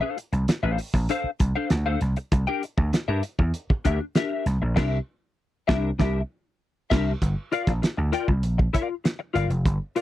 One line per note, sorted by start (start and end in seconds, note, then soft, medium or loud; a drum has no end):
0.01 0.16 D4 medium
0.01 0.17 A4 medium
0.01 0.17 C5 medium
0.01 0.18 F5 medium
0.17 muted clean electric guitar stroke soft
0.17 closed hi-hat medium
0.33 0.45 C2 loud
0.33 muted clean electric guitar stroke soft
0.33 closed hi-hat medium
0.48 muted clean electric guitar stroke soft
0.48 snare loud
0.48 closed hi-hat medium
0.63 0.76 A1 medium
0.63 0.78 D4 medium
0.63 0.79 A4 medium
0.63 0.79 C5 medium
0.63 0.79 F5 medium
0.78 muted clean electric guitar stroke soft
0.78 open hi-hat medium
0.94 1.06 A#1 medium
0.94 muted clean electric guitar stroke soft
0.94 kick loud
1.09 1.28 D4 medium
1.09 1.29 A4 medium
1.09 1.29 C5 loud
1.09 1.29 F5 medium
1.09 closed hi-hat medium
1.24 muted slap bass stroke soft
1.40 1.52 C2 medium
1.40 muted clean electric guitar stroke soft
1.40 kick medium
1.40 closed hi-hat medium
1.55 1.69 D4 medium
1.55 1.70 A4 medium
1.55 1.70 C5 medium
1.55 1.70 F5 medium
1.70 1.95 D2 loud
1.70 snare loud
1.70 closed hi-hat medium
1.86 1.99 D4 medium
1.86 2.00 A4 medium
1.86 2.00 C5 medium
1.86 2.00 F5 medium
2.01 2.14 C2 medium
2.01 muted clean electric guitar stroke medium
2.01 snare soft
2.01 closed hi-hat medium
2.16 muted clean electric guitar stroke soft
2.16 closed hi-hat medium
2.32 2.44 C2 loud
2.32 muted clean electric guitar stroke soft
2.32 kick loud
2.32 closed hi-hat medium
2.47 2.62 D4 medium
2.47 2.62 G4 medium
2.47 2.63 A#4 medium
2.47 2.64 G5 medium
2.63 muted clean electric guitar stroke soft
2.63 closed hi-hat medium
2.77 2.90 D2 medium
2.77 muted clean electric guitar stroke soft
2.77 kick loud
2.93 muted clean electric guitar stroke soft
2.93 snare loud
2.93 closed hi-hat loud
3.08 3.21 G2 loud
3.08 3.22 D4 medium
3.08 3.23 G4 medium
3.08 3.23 A#4 medium
3.08 3.23 E5 medium
3.23 muted clean electric guitar stroke soft
3.23 closed hi-hat medium
3.39 3.51 E2 medium
3.39 muted clean electric guitar stroke medium
3.39 kick medium
3.54 closed hi-hat medium
3.70 muted clean electric guitar stroke soft
3.70 muted slap bass stroke medium
3.70 kick loud
3.85 3.97 D2 medium
3.85 4.04 D4 medium
3.85 4.00 G4 medium
3.85 4.00 A#4 medium
3.85 3.99 E5 medium
3.85 kick loud
3.85 closed hi-hat medium
4.00 muted clean electric guitar stroke soft
4.15 4.44 D4 medium
4.15 4.44 G4 medium
4.15 4.44 A#4 medium
4.15 4.45 E5 medium
4.15 snare loud
4.15 closed hi-hat medium
4.46 4.58 C2 loud
4.46 muted clean electric guitar stroke soft
4.46 snare soft
4.46 closed hi-hat medium
4.62 4.74 A#1 medium
4.62 muted clean electric guitar stroke soft
4.76 4.98 C2 loud
4.76 4.98 D4 loud
4.76 4.98 G4 loud
4.76 4.98 A#4 loud
4.76 4.97 E5 loud
4.76 kick loud
4.76 snare loud
4.76 crash medium
5.68 5.90 C2 loud
5.68 5.90 D4 loud
5.68 5.89 G4 loud
5.68 5.89 A#4 loud
5.68 5.89 E5 loud
5.68 kick loud
5.68 snare loud
5.99 6.20 C2 loud
5.99 6.20 D4 medium
5.99 6.20 G4 loud
5.99 6.20 A#4 medium
5.99 6.21 E5 loud
5.99 kick loud
5.99 snare loud
6.90 7.12 C2 loud
6.90 7.12 D4 loud
6.90 7.12 G4 medium
6.90 7.12 A#4 medium
6.90 7.11 E5 medium
6.90 kick loud
6.90 snare loud
6.90 crash medium
7.22 7.34 G1 loud
7.22 kick loud
7.22 closed hi-hat medium
7.52 7.70 F4 medium
7.52 7.70 A#4 medium
7.52 7.70 D5 loud
7.52 7.71 F5 medium
7.52 closed hi-hat medium
7.67 7.79 A#1 medium
7.67 kick loud
7.67 snare soft
7.67 closed hi-hat soft
7.82 muted clean electric guitar stroke soft
7.82 snare loud
7.82 closed hi-hat medium
7.97 8.10 D2 medium
7.97 muted clean electric guitar stroke soft
8.12 8.31 F4 medium
8.12 8.28 A#4 medium
8.12 8.27 D5 medium
8.12 8.27 G5 medium
8.12 closed hi-hat medium
8.28 8.44 C2 medium
8.28 muted clean electric guitar stroke medium
8.28 kick medium
8.43 8.67 A#1 medium
8.43 closed hi-hat medium
8.58 muted clean electric guitar stroke soft
8.58 kick medium
8.73 8.94 F4 medium
8.73 8.88 A#4 medium
8.73 8.88 D5 medium
8.73 8.87 F5 medium
8.73 kick medium
8.73 closed hi-hat medium
8.89 muted clean electric guitar stroke soft
9.04 muted clean electric guitar stroke soft
9.04 snare loud
9.04 closed hi-hat medium
9.19 muted clean electric guitar stroke medium
9.34 9.47 G1 loud
9.34 9.52 F4 medium
9.34 9.51 A#4 medium
9.34 9.50 D5 medium
9.34 9.50 F5 medium
9.34 snare soft
9.34 closed hi-hat medium
9.50 9.65 F1 medium
9.50 muted clean electric guitar stroke soft
9.50 closed hi-hat soft
9.65 9.77 G1 loud
9.65 kick loud
9.65 closed hi-hat medium
9.96 10.01 F4 medium
9.96 10.01 A#4 medium
9.96 10.01 D5 medium
9.96 10.01 F5 medium
9.96 closed hi-hat medium